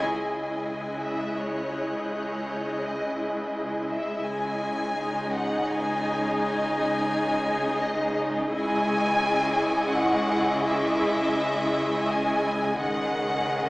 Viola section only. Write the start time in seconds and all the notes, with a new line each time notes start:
Already playing: G#3 E4
4.26 G#3
4.98 D#4
8.53 G#3 E4
12.79 D#3 G#3